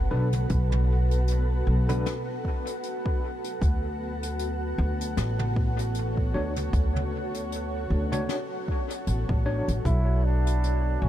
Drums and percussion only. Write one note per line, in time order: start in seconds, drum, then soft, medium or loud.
0.32 closed hi-hat medium
0.32 mid tom medium
0.49 kick loud
0.49 closed hi-hat medium
0.72 mid tom medium
1.11 closed hi-hat medium
1.28 closed hi-hat medium
1.89 closed hi-hat medium
1.89 mid tom medium
2.06 snare medium
2.06 closed hi-hat medium
2.45 kick medium
2.67 closed hi-hat medium
2.83 closed hi-hat medium
3.06 kick medium
3.44 closed hi-hat medium
3.62 kick loud
3.62 closed hi-hat medium
4.23 closed hi-hat medium
4.39 closed hi-hat medium
5.01 closed hi-hat medium
5.17 snare loud
5.17 closed hi-hat medium
5.39 mid tom medium
5.56 kick loud
5.79 closed hi-hat medium
5.94 closed hi-hat soft
6.17 kick medium
6.56 closed hi-hat medium
6.56 mid tom soft
6.73 kick loud
6.73 closed hi-hat soft
6.96 mid tom medium
7.34 closed hi-hat medium
7.52 closed hi-hat medium
8.12 closed hi-hat medium
8.12 mid tom medium
8.29 snare medium
8.29 closed hi-hat medium
8.68 kick medium
8.90 closed hi-hat medium
9.07 closed hi-hat medium
9.29 kick loud
9.68 closed hi-hat medium
9.85 kick loud
9.85 closed hi-hat medium
10.47 closed hi-hat medium
10.63 closed hi-hat soft